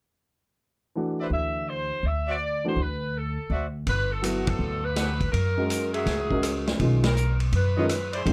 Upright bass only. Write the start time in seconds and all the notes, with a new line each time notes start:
1.30 D2
2.03 D2
2.76 D2
3.50 D2
3.87 G1
4.59 D2
5.33 F#2
6.06 C#2
6.80 B1
7.52 F#2
8.26 E2